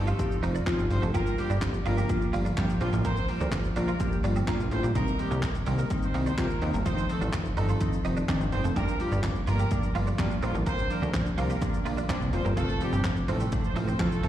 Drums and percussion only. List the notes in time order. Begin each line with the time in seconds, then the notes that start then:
0.07 shaker
0.19 kick, closed hi-hat, shaker
0.32 shaker
0.43 open hi-hat, shaker
0.55 shaker
0.66 kick, snare, clap, closed hi-hat, shaker
0.79 shaker
0.91 open hi-hat, shaker
1.03 shaker
1.14 kick, closed hi-hat, shaker
1.27 shaker
1.38 open hi-hat, shaker
1.50 shaker
1.61 kick, snare, clap, closed hi-hat, shaker
1.74 shaker
1.86 open hi-hat, shaker
1.98 shaker
2.09 kick, closed hi-hat, shaker
2.22 shaker
2.33 open hi-hat, shaker
2.46 shaker
2.57 kick, snare, clap, closed hi-hat, shaker
2.69 shaker
2.81 open hi-hat, shaker
2.93 shaker
3.05 kick, closed hi-hat, shaker
3.17 shaker
3.28 open hi-hat, shaker
3.40 shaker
3.51 kick, snare, clap, closed hi-hat, shaker
3.64 shaker
3.76 open hi-hat, shaker
3.88 shaker
4.00 kick, closed hi-hat, shaker
4.12 shaker
4.24 open hi-hat, shaker
4.36 shaker
4.47 kick, snare, clap, closed hi-hat, shaker
4.60 shaker
4.71 open hi-hat, shaker
4.84 shaker
4.95 kick, closed hi-hat, shaker
5.07 shaker
5.19 open hi-hat, shaker
5.31 shaker
5.42 kick, snare, clap, closed hi-hat, shaker
5.55 shaker
5.66 open hi-hat, shaker
5.78 shaker
5.90 kick, closed hi-hat, shaker
6.03 shaker
6.14 open hi-hat, shaker
6.26 shaker
6.38 kick, snare, clap, closed hi-hat, shaker
6.50 shaker
6.62 open hi-hat, shaker
6.74 shaker
6.86 kick, closed hi-hat, shaker
6.98 shaker
7.09 open hi-hat, shaker
7.22 shaker
7.32 kick, snare, clap, closed hi-hat, shaker
7.45 shaker
7.57 open hi-hat, shaker
7.69 shaker
7.81 kick, closed hi-hat, shaker
7.93 shaker
8.05 open hi-hat, shaker
8.17 shaker
8.28 kick, snare, clap, closed hi-hat, shaker
8.41 shaker
8.52 open hi-hat, shaker
8.64 shaker
8.76 kick, closed hi-hat, shaker
8.88 shaker
9.00 open hi-hat, shaker
9.12 shaker
9.23 kick, snare, clap, closed hi-hat, shaker
9.35 shaker
9.47 open hi-hat, shaker
9.59 shaker
9.71 kick, closed hi-hat, shaker
9.83 shaker
9.95 open hi-hat, shaker
10.07 shaker
10.18 kick, snare, clap, closed hi-hat, shaker
10.31 shaker
10.42 open hi-hat, shaker
10.55 shaker
10.66 kick, closed hi-hat, shaker
10.78 shaker
10.90 open hi-hat, shaker
11.03 shaker
11.13 kick, snare, clap, closed hi-hat, shaker
11.26 shaker
11.38 open hi-hat, shaker
11.50 shaker
11.62 kick, closed hi-hat, shaker
11.74 shaker
11.86 open hi-hat, shaker
11.98 shaker
12.09 kick, snare, clap, closed hi-hat, shaker
12.21 shaker
12.33 open hi-hat, shaker
12.45 shaker
12.57 kick, closed hi-hat, shaker
12.69 shaker
12.81 open hi-hat, shaker
12.93 shaker
13.04 kick, snare, clap, closed hi-hat, shaker
13.16 shaker
13.28 open hi-hat, shaker
13.40 shaker
13.52 kick, closed hi-hat, shaker
13.64 shaker
13.76 open hi-hat, shaker
13.88 shaker
13.99 kick, snare, clap, closed hi-hat, shaker
14.12 shaker
14.23 open hi-hat, shaker